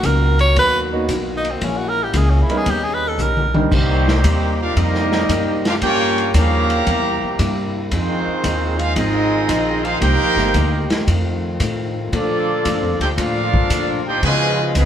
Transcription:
Already playing: trombone section D#3 A#3 B3 F#4
0.03 upright bass C#2, hollow-body jazz guitar B2 F#3 A#3 D#4, tenor saxophone A#4, kick, hi-hat pedal, ride
0.39 tenor saxophone C#5, ride
0.56 upright bass D#2, hollow-body jazz guitar B2 F#3 A#3 D#4, tenor saxophone B4, kick, ride
0.92 grand piano A#3 B3 C#4 D#4 F#4
1.09 upright bass B1, hollow-body jazz guitar B2 F#3 A#3 D#4, kick, hi-hat pedal, ride
1.37 tenor saxophone D#4
1.45 ride
1.51 tenor saxophone C4
1.61 upright bass A#1, hollow-body jazz guitar A#2 E3 G#3 C#4, trombone section C#3 G#3 E4, kick, ride
1.65 tenor saxophone C#4
1.77 tenor saxophone F#4
1.89 tenor saxophone A#4
2.03 tenor saxophone G4
2.14 upright bass C#2, hollow-body jazz guitar A#2 E3 G#3 C#4, tenor saxophone G#4, kick, hi-hat pedal, ride
2.30 tenor saxophone C#4
2.42 tenor saxophone E4
2.49 grand piano G3 B3 C#4 D#4 A#4, muted upright bass stroke, ride
2.57 tenor saxophone G#4
2.65 upright bass D#2, hollow-body jazz guitar D#3 B3 C#4 G4, trombone section G3 B3 D#4, kick, ride
2.70 tenor saxophone G4
2.84 tenor saxophone G#4
2.94 tenor saxophone B4
3.08 tenor saxophone A4
3.18 upright bass B1, hollow-body jazz guitar D#3 B3 C#4 G4, tenor saxophone A#4, hi-hat pedal, mid tom
3.37 mid tom
3.54 grand piano G3 C4 D4 D#4 A#4, mid tom
3.71 upright bass C2, hollow-body jazz guitar C3 G3 A#3 D#4, trombone section C3 D#3 G3 A#3 C4 D#4 G4, trumpet section A#3 D#4 G4 C5, kick, crash
4.08 snare
4.24 upright bass D#2, hollow-body jazz guitar C3 G3 A#3 D#4, kick, hi-hat pedal, ride
4.59 trumpet section D4 G4 A#4 F5, trombone section F4
4.76 upright bass F2, hollow-body jazz guitar C3 G3 A#3 D#4, trombone section G3 A#3 D#4, trumpet section C4 G4 A#4 D#5, kick, ride
4.95 snare
5.12 snare
5.29 upright bass F#2, hollow-body jazz guitar C3 G3 A#3 D#4, kick, hi-hat pedal, ride
5.65 trumpet section D4 G4 A#4 F5, trombone section F4, snare, ride
5.81 hollow-body jazz guitar G2 F3 A#3 C#4, upright bass G2, trombone section C#3 G3 A#3 C#4 F4 G4, trumpet section F4 A#4 C#5 G5, kick, ride
6.18 ride
6.34 upright bass D#2, hollow-body jazz guitar G2 F3 A#3 C#4, trombone section C#3 F3 A#3, trumpet section G4 C#5 F5 A#5, kick, hi-hat pedal, ride
6.70 ride
6.86 upright bass E2, hollow-body jazz guitar C3 G3 A#3 E4, trombone section C3 A#3 E4, kick, ride
7.23 muted upright bass stroke
7.39 upright bass G2, hollow-body jazz guitar C3 G3 A#3 E4, kick, hi-hat pedal, ride
7.91 upright bass F2, trombone section D#3 G#3 C4 F4, hollow-body jazz guitar F3 C4 D#4 G#4, trumpet section G#3 D#4 F4 C5, kick, ride
8.27 muted upright bass stroke
8.44 upright bass D#2, hollow-body jazz guitar F3 C4 D#4 G#4, kick, hi-hat pedal, ride
8.79 trombone section G#3 C4 F4, trumpet section D#4 G#4 C5 F5, ride
8.95 upright bass G#1, hollow-body jazz guitar F3 C4 D#4 G#4, trombone section G#3 C4 D#4, trumpet section C4 F4 G#4 D#5, kick, ride
9.49 upright bass A#1, hollow-body jazz guitar F3 C4 D#4 G#4, kick, hi-hat pedal, ride
9.83 trombone section G#3 C4 F4, trumpet section D#4 G#4 C5 F5, ride
10.00 upright bass C2, hollow-body jazz guitar C3 A#3 D#4 G4, trombone section A#3 C4 D#4 G4, trumpet section D#4 A#4 C5 G5, kick, ride
10.19 upright bass A#1
10.36 upright bass G1, snare
10.54 upright bass D2, hollow-body jazz guitar C3 A#3 D#4 G4, kick, hi-hat pedal, ride
10.90 muted upright bass stroke, snare, ride
11.07 upright bass F2, hollow-body jazz guitar F2 D#3 A3 C4, trombone section A3 C4 F4, kick, ride
11.59 hollow-body jazz guitar F2 D#3 A3 C4, upright bass A2, kick, hi-hat pedal, ride
12.12 upright bass A#2, hollow-body jazz guitar A#2 F3 A3 D4, trombone section D3 F3 D4 A4, trumpet section A#3 F4 A4 D5, kick, ride
12.65 upright bass G2, hollow-body jazz guitar A#2 F3 A3 D4, kick, hi-hat pedal, ride
12.82 upright bass F2
13.00 upright bass D2, trumpet section D#4 A4 C5 G5, trombone section G4, ride
13.17 upright bass A2, hollow-body jazz guitar A#2 F3 A3 D4, trombone section F3 D4 F4, trumpet section D4 A4 A#4 F5, kick, ride
13.54 kick
13.70 upright bass A#2, hollow-body jazz guitar A#2 F3 A3 D4, kick, hi-hat pedal, ride
14.06 trumpet section D#4 A4 C5 G5, trombone section G4
14.22 trombone section B2 C#3 F3 G#3 B3 D#4, hollow-body jazz guitar C#3 F3 B3 D#4, upright bass C#3, trumpet section F4 B4 D#5 G#5, kick, ride
14.75 upright bass C#2, hollow-body jazz guitar C#3 F3 B3 D#4, trombone section F3 G#3 B3, trumpet section G#4 D#5 F5 B5, kick, hi-hat pedal, ride

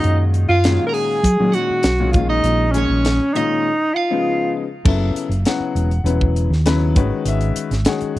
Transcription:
Already playing: grand piano A#2 D#3 G#3 C#4 F#4, alto saxophone D#4, overdriven electric guitar D#5
0.04 fingered electric bass F#2, closed hi-hat
0.34 closed hi-hat
0.48 fingered electric bass F#2, alto saxophone F4, overdriven electric guitar F5
0.64 grand piano A#2 D#3 G#3 C#4 F#4, snare, closed hi-hat
0.87 alto saxophone A#4, overdriven electric guitar A#5
0.93 alto saxophone G#4, overdriven electric guitar G#5, open hi-hat
1.23 fingered electric bass F#3, kick, closed hi-hat
1.39 grand piano A#2 D#3 G#3 C#4 F#4, fingered electric bass F#3
1.52 alto saxophone F#4, overdriven electric guitar F#5, closed hi-hat
1.70 muted fingered electric bass stroke
1.83 fingered electric bass B1, snare, closed hi-hat
2.00 grand piano A#2 D#3 G#3 C#4 F4
2.12 fingered electric bass A#1, grand piano A#2 D#3 G#3 C#4 F4, alto saxophone F4, overdriven electric guitar F5, kick, closed hi-hat
2.29 alto saxophone D#4, overdriven electric guitar D#5
2.44 fingered electric bass A#1, closed hi-hat
2.72 grand piano A#2 D#3 G#3 C#4 G#4, alto saxophone C#4, closed hi-hat
2.78 overdriven electric guitar C#5
2.89 fingered electric bass A#1
3.05 snare, closed hi-hat
3.34 grand piano A#2 D#3 G#3 C#4 F4, alto saxophone D#4, overdriven electric guitar D#5, closed hi-hat
3.94 alto saxophone F4, overdriven electric guitar F5
4.10 grand piano C#3 F3 G#3 B3 D#4
4.85 fingered electric bass F#1, grand piano C#3 F#3 B3 E4 A4 E5, kick, crash
5.15 muted fingered electric bass stroke, closed hi-hat
5.29 fingered electric bass F#1, closed hi-hat
5.45 grand piano C#3 F#3 B3 E4 F#4 F#5, snare, closed hi-hat
5.60 muted fingered electric bass stroke
5.75 fingered electric bass E1, closed hi-hat
5.91 closed hi-hat
6.04 fingered electric bass E1, grand piano C#3 F#3 B3 E4 B4, closed hi-hat
6.21 kick
6.36 closed hi-hat
6.50 fingered electric bass D#2, snare
6.66 grand piano C#3 F#3 B3 E4 B4, snare, closed hi-hat
6.95 fingered electric bass G#1, grand piano D#3 G#3 C#4 F#4 B4, kick, closed hi-hat
7.25 fingered electric bass G#1, grand piano E5, closed hi-hat
7.41 closed hi-hat
7.55 muted fingered electric bass stroke, closed hi-hat
7.71 fingered electric bass G#1, snare, closed hi-hat
7.85 grand piano D#3 G#3 C#4 F#4 G#4 F#5, snare, closed hi-hat
8.01 muted fingered electric bass stroke, closed hi-hat
8.16 fingered electric bass F#1

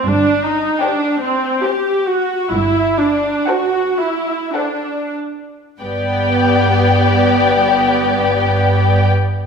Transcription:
0.05 double bass section G1, cello section G2, viola section D4
0.43 viola section D#4
0.81 viola section D4, violin section G4 C5 G5
1.21 viola section C4
1.63 viola section G4, violin section G4 C5 G5
2.06 viola section F#4
2.51 double bass section G1, cello section G2, viola section E4
2.98 viola section D4
3.48 viola section F#4, violin section A4 C5 F#5
3.99 viola section E4
4.54 viola section D4, violin section A4 C5 F#5
5.80 double bass section G1, cello section G2, viola section B3, violin section G4 D5 G5

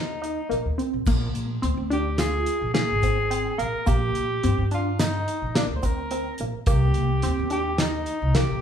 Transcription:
Already playing: upright bass D#2, tenor saxophone D#4
0.22 synth arpeggio sound D#4, closed hi-hat
0.49 upright bass A#1, synth arpeggio sound A#3, closed hi-hat
0.66 upright bass D#2
0.78 synth arpeggio sound C4, closed hi-hat
0.93 upright bass A#1
1.06 upright bass A#1, synth arpeggio sound A#3, kick, crash, shaker
1.34 upright bass A#1, closed hi-hat
1.62 upright bass D2, synth arpeggio sound C4, closed hi-hat, shaker
1.77 upright bass D2
1.90 synth arpeggio sound D4, tenor saxophone G4, closed hi-hat
2.18 synth arpeggio sound F4, tenor saxophone G#4, snare, closed hi-hat, shaker
2.46 closed hi-hat
2.62 upright bass A#1
2.74 synth arpeggio sound A#3, tenor saxophone G#4, snare, closed hi-hat
2.90 upright bass G#1
3.02 synth arpeggio sound C4, kick, closed hi-hat, shaker
3.31 synth arpeggio sound C4, closed hi-hat, shaker
3.58 upright bass A#1, synth arpeggio sound A#3, tenor saxophone A#4, closed hi-hat
3.86 upright bass A#1, synth arpeggio sound A#3, tenor saxophone G4, kick, closed hi-hat, shaker
4.15 upright bass A#1, closed hi-hat
4.43 upright bass G2, synth arpeggio sound C4, closed hi-hat, shaker
4.58 upright bass G2
4.71 synth arpeggio sound D4, tenor saxophone F4, closed hi-hat
4.99 synth arpeggio sound D#4, tenor saxophone D#4, snare, closed hi-hat, shaker
5.28 closed hi-hat
5.42 upright bass A#1
5.55 synth arpeggio sound A#3, tenor saxophone D4, snare, closed hi-hat
5.70 upright bass D2
5.76 tenor saxophone C5
5.83 synth arpeggio sound C4, tenor saxophone A#4, kick, closed hi-hat, shaker
6.11 synth arpeggio sound C4, closed hi-hat, shaker
6.38 upright bass A#1, synth arpeggio sound A#3, closed hi-hat
6.66 upright bass C2, synth arpeggio sound A#3, tenor saxophone G4, kick, closed hi-hat, shaker
6.94 upright bass C2, closed hi-hat
7.22 upright bass D#2, synth arpeggio sound C4, snare, closed hi-hat, shaker
7.39 upright bass D#2
7.50 synth arpeggio sound D4, tenor saxophone G4, closed hi-hat
7.78 synth arpeggio sound D#4, tenor saxophone D#4, snare, closed hi-hat, shaker
8.06 closed hi-hat
8.22 upright bass C2
8.35 synth arpeggio sound A#3, tenor saxophone G4, snare, closed hi-hat
8.50 upright bass A#1

